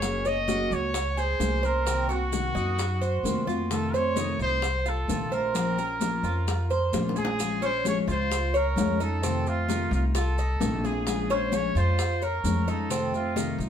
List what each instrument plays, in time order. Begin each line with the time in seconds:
Already playing: upright bass F#1, cuban tres G#4, trumpet C#5
0.01 steel-string acoustic guitar F#3 A#3 C#4 G#4, high bongo, high conga, maracas
0.25 steel-string acoustic guitar A#3 C#4 G#4, cuban tres C#5, trumpet D#5, high bongo, high conga, maracas
0.48 steel-string acoustic guitar F#3 A#3 C#4 G#4, cuban tres F#4, high bongo, high conga, maracas
0.71 upright bass C#2, steel-string acoustic guitar A#3 C#4 G#4, trumpet C#5, high conga, maracas
0.94 cuban tres C#5, muted steel-string acoustic guitar stroke, high bongo, high conga, maracas
1.17 cuban tres G#4, trumpet C5, high bongo, high conga, maracas
1.40 upright bass C2, steel-string acoustic guitar F#3 A#3 C#4 G#4, high bongo, low bongo, high conga, maracas
1.63 steel-string acoustic guitar A#3 C#4 G#4, trumpet A#4, cuban tres C5, high conga, maracas
1.86 steel-string acoustic guitar C3 D#3 A#3 C4 F#4, cuban tres C4, high bongo, high conga, maracas
2.09 steel-string acoustic guitar A#3 C4 F#4, cuban tres F#4, trumpet F#4, high bongo, high conga, maracas
2.32 steel-string acoustic guitar C3 D#3 A#3 C4 F#4, high bongo, high conga, maracas
2.55 upright bass F#2, steel-string acoustic guitar A#3 C4 F#4, cuban tres D#4, high conga, maracas
2.78 muted steel-string acoustic guitar stroke, high bongo, high conga, maracas
3.01 cuban tres C5, high bongo, high conga, maracas
3.23 upright bass F2, steel-string acoustic guitar C3 D#3 A#3 C4 F#4, high bongo, low bongo, high conga, maracas
3.47 steel-string acoustic guitar A#3 C4 F#4, cuban tres F4, high conga, maracas
3.70 steel-string acoustic guitar C3 D#3 A3 C4 F4, trumpet A4, high bongo, maracas
3.93 steel-string acoustic guitar A3 C4 F4, cuban tres C5, trumpet C#5, high bongo, high conga, maracas
4.16 steel-string acoustic guitar C3 D#3 A3 C4 F4, cuban tres D#4, high bongo, high conga, maracas
4.39 upright bass C2, steel-string acoustic guitar A3 C4 F4, trumpet C5, high conga, maracas
4.62 cuban tres C5, muted steel-string acoustic guitar stroke, high bongo, high conga, maracas
4.86 cuban tres F4, trumpet A4, high bongo, high conga, maracas
5.08 upright bass A#1, steel-string acoustic guitar C3 D#3 A3 C4 F4, high bongo, low bongo, high conga, maracas
5.31 steel-string acoustic guitar A3 C4 F4, trumpet A#4, cuban tres C5, high conga, maracas
5.54 steel-string acoustic guitar F3 A#3 C#4 F4 C5, cuban tres C4, high bongo, high conga, maracas
5.77 steel-string acoustic guitar C#4 F4 C5, cuban tres A#4, high bongo, high conga, maracas
6.00 steel-string acoustic guitar F3 A#3 C#4 F4 C5, high bongo, high conga, maracas
6.23 upright bass F2, steel-string acoustic guitar C#4 F4 C5, cuban tres F4, high conga, maracas
6.47 muted steel-string acoustic guitar stroke, high bongo, high conga, maracas
6.70 cuban tres C5, high bongo, high conga, maracas
6.93 upright bass A#1, steel-string acoustic guitar F3 A#3 C#4 F4 C5, high bongo, high conga, maracas
7.09 low bongo
7.16 steel-string acoustic guitar C#4 F4 C5, cuban tres G#4, trumpet G#4, high conga, maracas
7.25 low bongo
7.38 steel-string acoustic guitar F3 G#3 C#4 F4, high bongo, high conga, maracas
7.61 steel-string acoustic guitar G#3 C#4 F4, cuban tres C#4, trumpet C5, high bongo, high conga, maracas
7.84 steel-string acoustic guitar F3 G#3 C#4 F4, high bongo, high conga, maracas
7.88 trumpet C#5
8.07 upright bass C#2, steel-string acoustic guitar G#3 C#4 F4, cuban tres F4, trumpet C5, maracas
8.31 muted steel-string acoustic guitar stroke, high bongo, high conga, maracas
8.54 trumpet A#4, cuban tres C#5, high bongo, high conga, maracas
8.76 upright bass F2, steel-string acoustic guitar F3 G#3 C#4 F4, high bongo, low bongo, high conga, maracas
9.00 steel-string acoustic guitar G#3 C#4 F4, cuban tres D#4, trumpet A4, maracas
9.23 steel-string acoustic guitar C3 D#3 A3 C4 F4, cuban tres C4, high bongo, high conga, maracas
9.46 steel-string acoustic guitar A3 C4 F4, trumpet F4, high bongo, high conga, maracas
9.69 steel-string acoustic guitar C3 D#3 A3 C4 F4, cuban tres D#4, high bongo, high conga, maracas
9.91 upright bass C2, steel-string acoustic guitar A3 C4 F4, trumpet F4, high conga, maracas
10.15 cuban tres F4, trumpet A4, muted steel-string acoustic guitar stroke, high bongo, high conga, maracas
10.38 cuban tres D#4, high bongo, high conga, maracas
10.60 upright bass A#1, steel-string acoustic guitar C3 D#3 A3 C4 F4, high bongo, low bongo, high conga, maracas
10.84 steel-string acoustic guitar A3 C4 F4, cuban tres G#4, trumpet G#4, high conga, maracas
11.06 steel-string acoustic guitar F3 G#3 C#4 F4, high bongo, high conga, maracas
11.29 steel-string acoustic guitar G#3 C#4 F4, cuban tres C#4, trumpet C5, high bongo, high conga, maracas
11.52 steel-string acoustic guitar F3 G#3 C#4 F4, trumpet C#5, high bongo, high conga, maracas
11.75 upright bass F2, steel-string acoustic guitar G#3 C#4 F4, cuban tres F4, trumpet C5, high conga, maracas
11.99 muted steel-string acoustic guitar stroke, high bongo, high conga, maracas
12.22 trumpet A#4, cuban tres C#5, high bongo, high conga, maracas
12.44 upright bass F2, steel-string acoustic guitar F3 G#3 C#4 F4, high bongo, low bongo, high conga, maracas
12.67 steel-string acoustic guitar G#3 C#4 F4, cuban tres D#4, trumpet A4, maracas
12.89 steel-string acoustic guitar C3 D#3 A3 C4 F4, cuban tres C4, high bongo, high conga, maracas
13.13 steel-string acoustic guitar A3 C4 F4, trumpet F4, high bongo, high conga, maracas
13.36 steel-string acoustic guitar C3 D#3 A3 C4 F4, cuban tres D#4, high bongo, high conga, maracas
13.58 upright bass C2, steel-string acoustic guitar A3 C4 F4, high conga, maracas